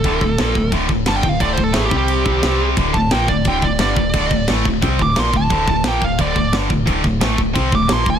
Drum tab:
CC |x-x-x-x-|x-x-x-x-|x-x-x-x-|x-x-x-x-|
SD |--o---o-|--o---o-|--o---o-|--o---o-|
BD |oo-ooo-o|oo-o-o--|oo-ooo-o|oo-ooo-o|

CC |x-x-x-x-|x-x-x-x-|
SD |--o---o-|--o---o-|
BD |oo-ooo-o|oo-ooo-o|